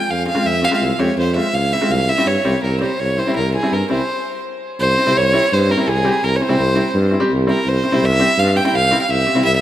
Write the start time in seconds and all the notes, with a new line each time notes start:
Already playing: G5
0.08 F2 F5
0.26 C4 G#4 F5
0.35 G#3 C4 F4
0.44 F2 E5
0.62 C4 G4 F5
0.67 G#3 E5
0.71 C4 F4
0.76 F5
0.81 C2
0.99 F2 G#3 C4 G4 C#5
1.17 F2 C5
1.36 G#3 C4 F4 E5
1.53 C#2 F5
1.73 C4 E4 E5
1.81 G#3 C4 F4
1.89 C2 F5
2.09 C4 E4 E5
2.18 G3 C4 E4
2.26 G2 C#5
2.44 C2 G3 C4 G4
2.63 C2 A#4
2.81 G3 C4 G4 C5
2.99 C2 C#5
3.17 C4 E4 C5
3.27 G3 C4 E4
3.35 C2 A#4
3.54 C4 E4 G#4
3.63 G3 C4 E4
3.72 G2 A#4
3.89 C2 G3 C4 E4 C5
4.80 C2 C5
4.98 C4 E4
5.06 C3 G3 C4 E4
5.16 C2 C#5
5.33 G3 C4 E4
5.52 G2 C5
5.69 C4 E4 A#4
5.77 G3 C4 E4
5.88 C2 G#4
6.05 G3 C4 G4
6.23 C2 A#4
6.36 C4 C#5
6.40 E4 C5
6.49 C3 G3 C4 E4
6.59 C2
6.75 G3 C4 E4
6.94 G2
7.11 C4 E4
7.20 G3 C4 G4
7.30 C2
7.47 G3 C4 E4 A#4
7.66 C2 C5
7.84 C4 E4
7.92 C3 G3 C4 E4
8.02 C2 E5
8.19 G3 C4 G4
8.37 G2 F5
8.56 C4 G4 G5
8.65 G3 C4 E4 G5
8.74 C2 F5
8.91 G3 C4 E4
9.02 F5
9.09 C2 E5
9.27 C4 G4
9.35 C3 G3 C4 E4
9.44 C2 E5
9.56 E5